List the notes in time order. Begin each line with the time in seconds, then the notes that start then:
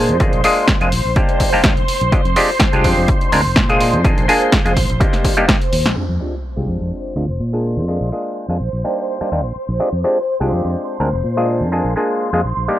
Already playing: A#2 G#3 A#3 D4 F4 G#4 C5 C6
0.09 F2, closed hi-hat
0.20 G#3 A#3 D4 F4 G#4, kick, closed hi-hat
0.33 A#1, closed hi-hat
0.44 G#3 A#3 D4 F4 G#4, open hi-hat
0.68 kick, snare, closed hi-hat
0.81 F2 G#3 A#3 D4 F4 G#4, closed hi-hat
0.92 A#1, open hi-hat
1.05 A#1
1.16 G3 A#3 D4 D#4 G4, kick, closed hi-hat
1.29 closed hi-hat
1.40 kick, open hi-hat
1.53 G3 A#3 D4 D#4 G4, muted fingered electric bass stroke
1.64 D#2 G3 D4, kick, snare, closed hi-hat
1.77 A#1, closed hi-hat
1.88 open hi-hat
2.01 A#1, closed hi-hat
2.12 G#3 C4 D4 F4 G4, kick, closed hi-hat
2.25 F2, closed hi-hat
2.36 G#3 C4 D4 F4 G4, open hi-hat
2.60 kick, snare, closed hi-hat
2.72 C2 G#3 C4 D4 F4 G4, closed hi-hat
2.84 F2, kick, open hi-hat
2.97 F2
3.08 kick, closed hi-hat
3.21 closed hi-hat
3.32 D2 G#3 C4 D4 F4 A#4, open hi-hat
3.45 F1
3.56 A#2, kick, snare, closed hi-hat
3.69 G#3 A#3 D4 F4 G#4, closed hi-hat
3.81 open hi-hat
3.93 F2, closed hi-hat
4.04 G#3 A#3 D4 F4 G#4, kick, closed hi-hat
4.18 A#1, closed hi-hat
4.28 G#3 A#3 D4 F4 G#4, open hi-hat
4.42 closed hi-hat
4.52 kick, snare, closed hi-hat
4.65 F2 G#3 A#3 D4 F4 G#4, closed hi-hat
4.77 A#1, kick, open hi-hat
4.90 A#1, closed hi-hat
5.00 G3 A#3 D4 D#4 G4, kick, closed hi-hat
5.13 snare, closed hi-hat
5.25 kick, open hi-hat
5.37 G3 A#3 D4 D#4 G4, closed hi-hat
5.49 D4 D#4 G4, kick, snare, closed hi-hat
5.62 closed hi-hat
5.73 D#2, open hi-hat
5.86 A#1, snare
5.96 G#3 C4 D4 F4 G4 C5 C6, muted fingered electric bass stroke, sub drop
6.09 F2
6.20 G#3 C4 D4 F4 G4
6.56 C2 G#3 C4 D4 F4 G4
6.68 F2
6.81 F2
7.16 D2 G#3 C4 D4 F4 A#4
7.28 F1
7.40 A#2
7.53 G#3 A#3 D4 F4 G#4
7.77 F2
7.88 G#3 A#3 D4 F4 G#4
8.01 A#1
8.12 G#3 A#3 D4 F4 G#4
8.48 F2 G#3 A#3 D4 F4 G#4
8.60 A#1
8.73 A#1
8.84 G3 A#3 D4 D#4 G4
9.21 G3 A#3 D4 D#4 G4, muted fingered electric bass stroke
9.32 D#2 G3 A#3 D4 D#4 G4
9.45 A#1
9.69 A#1
9.79 G#3 C4 D4 F4 G4, muted fingered electric bass stroke
9.92 F2
10.04 G#3 C4 D4 F4 G4
10.40 C2 G#3 C4 D4 F4 G4
10.52 F2
10.65 F2
11.00 D2 G#3 C4 D4 F4 A#4
11.13 F1
11.24 A#2
11.37 G#3 A#3 D4 F4 G#4
11.61 F2
11.72 G#3 A#3 D4 F4 G#4
11.84 A#1
11.96 G#3 A#3 D4 F4 G#4
12.33 F2 G#3 A#3 D4 F4 G#4
12.44 A#1
12.57 A#1
12.68 G3 A#3 D4 D#4 G4, reverse cymbal